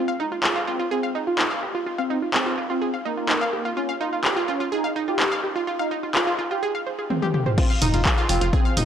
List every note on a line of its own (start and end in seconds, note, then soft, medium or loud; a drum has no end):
0.08 0.13 F5 medium
0.20 0.33 D#4 medium
0.20 0.25 D#4 medium
0.32 0.37 F4 medium
0.44 0.57 F4 medium
0.44 0.49 G#4 medium
0.44 clap loud
0.56 0.61 F4 loud
0.67 0.80 C4 medium
0.67 0.75 F4 loud
0.80 0.84 F4 medium
0.91 1.11 C4 medium
0.91 0.99 G#4 loud
1.03 1.08 F5 medium
1.15 1.20 D#4 loud
1.27 1.46 F4 medium
1.27 1.32 F4 medium
1.39 1.46 D#4 medium
1.39 clap loud
1.51 1.58 F5 loud
1.63 1.68 G4 medium
1.75 1.80 F4 medium
1.86 1.94 F4 medium
1.98 2.18 C4 loud
1.98 2.03 F5 loud
2.10 2.15 D#4 loud
2.22 2.27 F4 medium
2.34 2.53 C4 loud
2.34 2.39 G#4 medium
2.34 clap loud
2.46 2.51 F4 loud
2.58 2.65 F4 medium
2.70 2.89 C4 medium
2.70 2.75 F4 medium
2.82 2.89 G#4 medium
2.94 2.99 F5 medium
3.05 3.67 A#3 medium
3.05 3.11 D#4 loud
3.17 3.22 F4 medium
3.29 3.37 D#4 medium
3.29 clap loud
3.41 3.49 F5 loud
3.53 3.58 G4 medium
3.65 3.70 F4 medium
3.77 3.90 C#4 medium
3.77 3.84 F4 medium
3.89 3.94 F5 loud
4.01 4.06 D#4 loud
4.01 4.14 F4 medium
4.13 4.18 F4 medium
4.24 4.38 G4 medium
4.24 4.30 G#4 medium
4.24 clap loud
4.36 4.41 F4 loud
4.48 4.61 C#4 medium
4.48 4.56 F4 medium
4.60 4.65 F4 medium
4.72 4.92 D#4 medium
4.72 4.80 G#4 loud
4.84 4.89 F5 medium
4.96 5.01 D#4 loud
5.08 5.13 F4 medium
5.08 5.27 G4 medium
5.20 5.27 D#4 medium
5.20 clap loud
5.32 5.39 F5 loud
5.43 5.49 G4 medium
5.56 5.61 F4 loud
5.67 5.75 F4 medium
5.79 5.99 D#4 medium
5.79 5.84 F5 loud
5.91 5.96 D#4 loud
6.03 6.08 F4 medium
6.15 6.34 F4 loud
6.15 6.20 G#4 medium
6.15 clap loud
6.27 6.32 F4 loud
6.39 6.46 F4 loud
6.51 6.56 F4 medium
6.51 6.63 G4 medium
6.63 6.70 G#4 loud
6.75 6.80 F5 medium
6.86 6.94 C5 medium
6.99 7.03 G#4 medium
7.10 7.13 C4 medium
7.10 high tom medium
7.22 7.25 G4 medium
7.22 high tom medium
7.34 7.39 G4 medium
7.34 mid tom medium
7.46 7.51 C5 medium
7.46 mid tom medium
7.58 7.71 C4 loud
7.58 7.66 F4 medium
7.58 7.66 F5 medium
7.58 kick loud
7.58 closed hi-hat soft
7.58 crash loud
7.70 7.75 F5 loud
7.70 7.75 F6 medium
7.82 7.91 F1 medium
7.82 7.95 D#4 medium
7.82 7.87 D#4 loud
7.82 7.87 D#5 medium
7.82 mid tom medium
7.82 open hi-hat loud
7.94 8.03 F1 medium
7.94 7.99 F4 medium
7.94 7.99 F5 medium
7.94 closed hi-hat soft
8.05 8.19 F4 medium
8.05 8.11 G#4 medium
8.05 8.11 G#5 medium
8.05 kick loud
8.05 clap loud
8.05 closed hi-hat soft
8.18 8.23 F4 loud
8.18 8.23 F5 medium
8.29 8.39 F1 medium
8.29 8.42 C4 medium
8.29 8.37 F4 loud
8.29 8.37 F5 medium
8.29 open hi-hat loud
8.41 8.51 F1 medium
8.41 8.46 F4 loud
8.41 8.46 F5 medium
8.41 closed hi-hat soft
8.53 8.73 C4 medium
8.53 8.61 G#4 loud
8.53 8.61 G#5 medium
8.53 kick loud
8.53 closed hi-hat soft
8.65 8.70 F5 loud
8.65 8.70 F6 medium
8.77 8.85 F1 loud
8.77 8.82 D#4 loud
8.77 8.82 D#5 medium
8.77 mid tom medium
8.77 open hi-hat loud